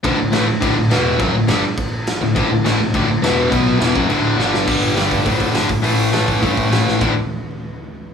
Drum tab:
CC |x-x-x-x-|x-x-x-x-|x-x-x-x-|x-x-x---|
HH |--------|--------|--------|--------|
SD |--o---o-|--o---o-|--o---o-|--o---oo|
FT |--------|--------|--------|--------|
BD |o---o---|o---o---|o---o---|o--o----|

CC |x-------|--------|x-------|
HH |-ooooooo|ooooooo-|--------|
SD |--o---o-|--o---oo|--------|
FT |--------|--------|o-------|
BD |o--ooo-o|---ooo--|o-------|